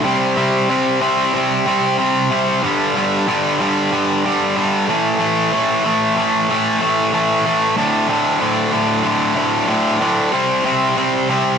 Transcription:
0.05 0.35 C3 loud
0.05 0.37 G3 loud
0.05 0.36 C4 loud
0.37 0.68 C3 medium
0.37 0.69 G3 medium
0.37 0.69 C4 loud
0.69 1.00 C3 medium
0.69 1.00 G3 medium
0.69 1.00 C4 medium
1.01 1.32 C3 medium
1.01 1.33 G3 medium
1.01 1.33 C4 loud
1.33 1.65 C3 loud
1.33 1.65 G3 loud
1.33 1.66 C4 loud
1.66 1.97 C3 medium
1.66 1.97 G3 loud
1.66 1.98 C4 medium
1.98 2.29 C3 medium
1.98 2.29 G3 loud
1.98 2.30 C4 loud
2.30 2.61 C3 medium
2.30 2.61 G3 loud
2.30 2.61 C4 loud
2.63 2.94 G2 loud
2.63 2.95 D3 loud
2.63 2.95 G3 loud
2.96 3.26 G2 medium
2.96 3.27 D3 medium
2.96 3.27 G3 medium
3.27 3.58 G2 medium
3.27 3.59 D3 medium
3.27 3.59 G3 loud
3.59 3.90 G2 medium
3.59 3.91 D3 medium
3.59 3.91 G3 medium
3.91 4.24 G2 loud
3.91 4.24 D3 loud
3.91 4.24 G3 loud
4.25 4.55 G2 medium
4.25 4.55 D3 medium
4.25 4.55 G3 loud
4.56 4.86 G2 medium
4.56 4.86 D3 medium
4.56 4.86 G3 loud
4.88 5.18 A2 loud
4.88 5.19 E3 loud
4.88 5.20 A3 loud
5.19 5.51 A2 medium
5.19 5.51 E3 medium
5.19 5.53 A3 loud
5.52 5.83 A2 medium
5.52 5.84 E3 medium
5.52 5.85 A3 medium
5.84 6.15 A2 medium
5.84 6.16 E3 medium
5.84 6.17 A3 medium
6.16 6.48 A2 medium
6.16 6.49 E3 medium
6.16 6.49 A3 medium
6.49 6.80 A2 loud
6.49 6.80 E3 medium
6.49 6.81 A3 loud
6.81 7.12 A2 medium
6.81 7.12 E3 medium
6.81 7.13 A3 loud
7.13 7.44 A2 medium
7.13 7.45 E3 medium
7.13 7.45 A3 medium
7.45 7.75 A2 medium
7.45 7.75 E3 loud
7.45 7.75 A3 loud
7.77 8.07 D2 medium
7.77 8.08 A2 loud
7.77 8.09 D3 loud
8.09 8.38 D2 medium
8.09 8.39 A2 medium
8.09 8.39 D3 medium
8.39 8.70 D2 medium
8.39 8.71 A2 medium
8.39 8.71 D3 medium
8.72 9.02 D2 medium
8.72 9.03 A2 medium
8.72 9.03 D3 medium
9.04 9.34 D2 loud
9.04 9.34 A2 loud
9.04 9.34 D3 loud
9.35 9.66 D2 medium
9.35 9.67 A2 loud
9.35 9.67 D3 medium
9.68 9.99 D2 medium
9.68 9.99 A2 loud
9.68 9.99 D3 medium
10.00 10.31 D2 medium
10.00 10.31 A2 medium
10.00 10.31 D3 loud
10.33 10.63 C3 loud
10.33 10.65 G3 loud
10.33 10.64 C4 loud
10.64 10.95 C3 medium
10.64 10.96 G3 medium
10.64 10.96 C4 loud
10.96 11.28 C3 medium
10.96 11.28 G3 medium
10.96 11.29 C4 medium
11.29 11.58 C3 medium
11.29 11.58 G3 medium
11.29 11.58 C4 medium

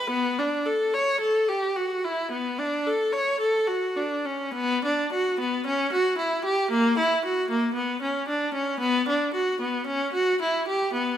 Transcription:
0.10 0.36 B3 medium
0.38 0.65 D4 medium
0.66 0.92 A4 medium
0.94 1.20 C#5 medium
1.20 1.47 A4 medium
1.48 1.76 G4 medium
1.76 2.03 F#4 medium
2.04 2.31 E4 medium
2.31 2.58 B3 medium
2.58 2.86 D4 medium
2.86 3.13 A4 medium
3.13 3.40 C#5 medium
3.40 3.67 A4 medium
3.67 3.96 F#4 soft
3.96 4.25 D4 soft
4.25 4.54 C#4 medium
4.54 4.82 B3 medium
4.84 5.11 D4 medium
5.12 5.39 F#4 medium
5.40 5.66 B3 medium
5.66 5.92 C#4 medium
5.92 6.18 F#4 medium
6.18 6.44 E4 medium
6.45 6.71 G4 medium
6.71 6.97 A#3 medium
6.98 7.23 E4 medium
7.25 7.50 F#4 medium
7.50 7.75 A#3 medium
7.74 8.00 B3 medium
8.02 8.27 C#4 medium
8.28 8.53 D4 medium
8.54 8.80 C#4 medium
8.80 9.06 B3 medium
9.08 9.33 D4 medium
9.34 9.59 F#4 medium
9.60 9.86 B3 medium
9.87 10.12 C#4 medium
10.13 10.39 F#4 medium
10.42 10.66 E4 medium
10.67 10.92 G4 medium
10.93 11.17 B3 medium

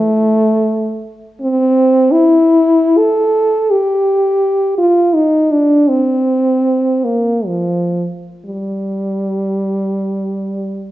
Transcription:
0.00 1.03 A3 medium
1.41 2.13 C4 medium
2.12 2.99 E4 medium
2.97 3.72 A4 medium
3.70 4.77 G4 medium
4.78 5.16 F4 medium
5.15 5.53 D#4 medium
5.51 5.90 D4 medium
5.88 7.06 C4 medium
7.04 7.48 A#3 medium
7.46 8.08 F3 soft
8.46 10.91 G3 medium

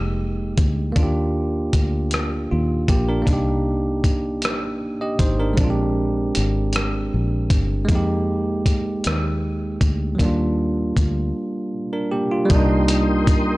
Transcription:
0.00 0.55 F1 medium
0.00 0.90 G#3 medium
0.00 0.91 A#3 medium
0.00 0.94 D#4 medium
0.00 0.99 G4 medium
0.58 0.93 D2 medium
0.58 kick loud
0.58 closed hi-hat medium
0.92 2.45 A#3 medium
0.92 2.47 D4 medium
0.92 kick medium
0.92 closed hi-hat medium
0.97 1.70 D#2 medium
0.97 2.48 F4 medium
1.03 2.50 G4 medium
1.73 2.47 D2 medium
1.73 kick medium
1.73 closed hi-hat medium
2.11 cross-stick medium
2.11 closed hi-hat medium
2.51 2.86 D#2 medium
2.51 2.87 F4 soft
2.88 3.23 A#1 medium
2.88 3.07 A#3 soft
2.88 3.07 G4 medium
2.88 kick medium
2.88 closed hi-hat medium
3.09 3.25 D4 soft
3.09 3.45 A#4 medium
3.22 5.51 A#3 medium
3.22 4.39 D4 medium
3.27 4.45 C2 medium
3.27 4.41 D#4 medium
3.27 kick medium
3.27 closed hi-hat medium
3.33 4.43 G4 medium
4.04 kick medium
4.04 closed hi-hat medium
4.42 5.16 A#1 medium
4.42 cross-stick medium
4.42 closed hi-hat medium
5.01 5.19 G4 soft
5.01 5.19 D#5 medium
5.19 5.54 G#1 medium
5.19 5.38 D#4 medium
5.19 5.38 C5 medium
5.19 kick medium
5.19 closed hi-hat medium
5.39 5.59 D4 soft
5.39 5.76 A#4 medium
5.53 7.82 G#3 medium
5.53 7.84 C4 medium
5.53 closed hi-hat medium
5.57 6.31 A#1 loud
5.57 7.86 D4 medium
5.57 kick medium
5.64 5.67 F4 medium
5.70 7.91 G4 medium
6.35 7.09 G#1 medium
6.35 closed hi-hat medium
6.73 cross-stick medium
6.73 closed hi-hat medium
7.14 7.47 A#1 medium
7.50 7.85 G1 medium
7.50 kick medium
7.50 closed hi-hat medium
7.85 10.14 G#3 medium
7.85 10.15 A#3 medium
7.85 kick medium
7.85 closed hi-hat medium
7.90 9.00 F2 medium
7.90 10.17 D#4 medium
7.95 10.19 G4 medium
8.66 kick medium
8.66 closed hi-hat medium
9.04 9.78 D#2 medium
9.04 cross-stick medium
9.04 closed hi-hat medium
9.81 10.16 D2 medium
9.81 kick medium
9.81 closed hi-hat medium
10.15 10.24 F#3 medium
10.15 11.70 A#3 medium
10.19 10.93 D#2 loud
10.19 12.44 G3 medium
10.19 11.71 D4 medium
10.19 kick medium
10.19 closed hi-hat medium
10.25 11.73 F4 medium
10.97 11.32 D2 medium
10.97 kick medium
10.97 closed hi-hat medium
11.93 12.11 D4 soft
11.93 12.11 A#4 medium
12.11 12.30 A#3 soft
12.11 12.30 G4 medium
12.31 12.68 F4 medium
12.45 13.57 G3 medium
12.45 13.57 A#3 medium
12.50 13.57 C2 loud
12.50 13.57 D4 medium
12.50 13.57 A#4 medium
12.50 13.57 G5 medium
12.50 13.57 C6 medium
12.50 13.57 D#6 medium
12.50 kick loud
12.50 closed hi-hat medium
12.56 13.57 D#4 medium
12.88 closed hi-hat medium
13.27 kick medium
13.27 closed hi-hat medium

